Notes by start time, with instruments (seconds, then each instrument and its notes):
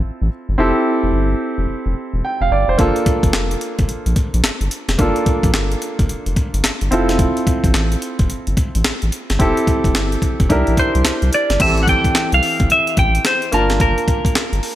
Already playing: grand piano C4 E4 F4 A4
0.04 analog synth bass A1
0.22 analog synth bass A1
0.49 analog synth bass G1
0.58 analog synth bass F1, grand piano C4 E4 G4 A4
1.03 analog synth bass F1
1.13 analog synth bass G1
1.58 analog synth bass F1
1.69 analog synth bass F1
1.86 analog synth bass F1
2.14 analog synth bass E1
2.25 grand piano G5
2.41 analog synth bass F1, grand piano F5
2.51 analog synth bass G1, grand piano D5
2.68 analog synth bass F1, grand piano C5
2.78 analog synth bass G1, grand piano A#3 D4 F4 A4, kick, closed hi-hat
2.96 closed hi-hat
3.06 kick, closed hi-hat
3.23 analog synth bass G1, kick, closed hi-hat
3.33 analog synth bass F1, snare, clap, closed hi-hat
3.51 closed hi-hat
3.61 closed hi-hat
3.79 analog synth bass G1, kick, closed hi-hat
3.89 analog synth bass A#1, closed hi-hat
4.06 analog synth bass A#1, closed hi-hat
4.16 kick, closed hi-hat
4.34 analog synth bass A#1, closed hi-hat
4.44 analog synth bass G1, snare, clap, closed hi-hat
4.61 analog synth bass G1, closed hi-hat
4.71 closed hi-hat
4.89 analog synth bass F1, snare, closed hi-hat
4.98 analog synth bass G1, grand piano A#3 D4 F4 A4, kick, closed hi-hat
5.16 closed hi-hat
5.26 kick, closed hi-hat
5.43 analog synth bass A#1, kick, closed hi-hat
5.54 analog synth bass G1, snare, clap, closed hi-hat
5.72 closed hi-hat
5.82 closed hi-hat
5.99 analog synth bass G1, kick, closed hi-hat
6.09 analog synth bass F1, closed hi-hat
6.26 analog synth bass F1, closed hi-hat
6.36 kick, closed hi-hat
6.54 analog synth bass G1, closed hi-hat
6.64 analog synth bass G1, snare, clap, closed hi-hat
6.81 analog synth bass G1, closed hi-hat
6.91 analog synth bass F1, grand piano C4 E4 F4 A4, closed hi-hat
7.09 snare, closed hi-hat
7.19 kick, closed hi-hat
7.37 closed hi-hat
7.47 kick, closed hi-hat
7.64 analog synth bass A1, kick, closed hi-hat
7.74 analog synth bass A1, snare, clap, closed hi-hat
7.92 closed hi-hat
8.02 closed hi-hat
8.19 analog synth bass F1, kick, closed hi-hat
8.30 analog synth bass G1, closed hi-hat
8.47 analog synth bass G1, closed hi-hat
8.57 kick, closed hi-hat
8.75 analog synth bass A1, closed hi-hat
8.84 analog synth bass A1, snare, clap, closed hi-hat
9.02 analog synth bass A1, closed hi-hat
9.12 closed hi-hat
9.30 analog synth bass G1, snare, closed hi-hat
9.39 analog synth bass F1, grand piano C4 E4 G4 A4, kick, closed hi-hat
9.57 closed hi-hat
9.67 kick, closed hi-hat
9.84 analog synth bass F1, kick, closed hi-hat
9.95 analog synth bass G1, snare, clap, closed hi-hat
10.12 closed hi-hat
10.22 kick, closed hi-hat
10.40 analog synth bass F1, kick, closed hi-hat
10.49 analog synth bass C2, grand piano D4 E4 G4 A#4, kick, closed hi-hat
10.67 analog synth bass A#1, closed hi-hat
10.77 clean electric guitar C5, kick, closed hi-hat
10.95 analog synth bass C2, closed hi-hat
11.05 analog synth bass C2, snare, clap, closed hi-hat
11.22 analog synth bass C2, closed hi-hat
11.33 clean electric guitar D5, closed hi-hat
11.50 analog synth bass G1, snare, closed hi-hat
11.60 analog synth bass A1, grand piano E3 C4 G4 A4, clean electric guitar E5, kick, closed hi-hat, crash
11.77 closed hi-hat
11.83 clean electric guitar F#5
11.88 clean electric guitar G5, kick, closed hi-hat
12.04 kick, closed hi-hat
12.15 snare, clap, closed hi-hat
12.32 analog synth bass C2, clean electric guitar F5, closed hi-hat
12.43 open hi-hat
12.60 analog synth bass G1, kick, closed hi-hat
12.70 clean electric guitar E5, closed hi-hat
12.87 closed hi-hat
12.97 analog synth bass A1, clean electric guitar G5, kick, closed hi-hat
13.15 closed hi-hat
13.25 clean electric guitar C5, snare, clap, closed hi-hat
13.42 closed hi-hat
13.52 analog synth bass G1, grand piano A#3 D4 F4 A5, clean electric guitar A#4, closed hi-hat
13.70 snare, closed hi-hat
13.80 clean electric guitar A#4, kick, closed hi-hat
13.98 closed hi-hat
14.08 kick, closed hi-hat
14.25 kick, closed hi-hat
14.35 snare, clap, closed hi-hat
14.53 analog synth bass G1, closed hi-hat
14.63 open hi-hat